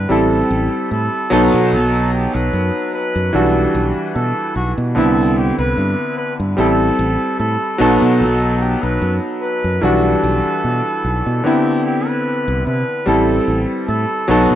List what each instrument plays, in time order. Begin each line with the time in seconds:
Already playing: electric grand piano D3 B3 C4 E4, flugelhorn B4
0.09 fingered electric bass A1, electric grand piano G3 C4 E4 A4, flugelhorn A4
0.51 fingered electric bass A1
0.91 fingered electric bass A2, flugelhorn A4
1.30 fingered electric bass B1, electric grand piano F#3 B3 D#4 A4, flugelhorn F#4
1.54 fingered electric bass B2
1.72 fingered electric bass B1, flugelhorn A4
2.13 flugelhorn G4
2.34 fingered electric bass B1, flugelhorn B4
2.53 fingered electric bass F#2
2.94 flugelhorn B4
3.15 fingered electric bass F#2
3.33 fingered electric bass B1, electric grand piano E3 G3 D4 F#4, flugelhorn A4
3.75 fingered electric bass B1
3.96 muted fingered electric bass stroke
4.15 fingered electric bass B2, flugelhorn A4
4.56 fingered electric bass B1, flugelhorn F#4
4.78 fingered electric bass B2
4.95 fingered electric bass C2, electric grand piano D3 B3 C4 E4, flugelhorn A4
5.37 flugelhorn G4
5.58 fingered electric bass C2, flugelhorn B4
5.77 fingered electric bass G2
6.18 flugelhorn B4
6.40 fingered electric bass G2
6.57 fingered electric bass A1, electric grand piano G3 C4 E4 A4, flugelhorn A4
6.99 fingered electric bass A1
7.39 fingered electric bass A2, flugelhorn A4
7.78 fingered electric bass B1, electric grand piano F#3 B3 D#4 A4, flugelhorn F#4
8.02 fingered electric bass B2
8.20 fingered electric bass B1, flugelhorn A4
8.61 flugelhorn G4
8.83 fingered electric bass B1, flugelhorn B4
9.02 fingered electric bass F#2
9.42 flugelhorn B4
9.64 fingered electric bass F#2
9.81 fingered electric bass B1, electric grand piano E3 G3 D4 F#4, flugelhorn A4
10.23 fingered electric bass B1
10.45 muted fingered electric bass stroke
10.64 fingered electric bass B2
11.04 fingered electric bass B1
11.26 fingered electric bass B2
11.44 electric grand piano D3 B3 C4 E4, flugelhorn G4
11.85 flugelhorn G4
12.07 flugelhorn B4
12.48 fingered electric bass C2
12.67 fingered electric bass C3, flugelhorn B4
13.06 fingered electric bass A1, electric grand piano G3 C4 E4 A4, flugelhorn A4
13.48 fingered electric bass A1
13.88 fingered electric bass A2, flugelhorn A4
14.28 fingered electric bass B1, electric grand piano F#3 B3 D#4 A4, flugelhorn F#4
14.51 fingered electric bass B2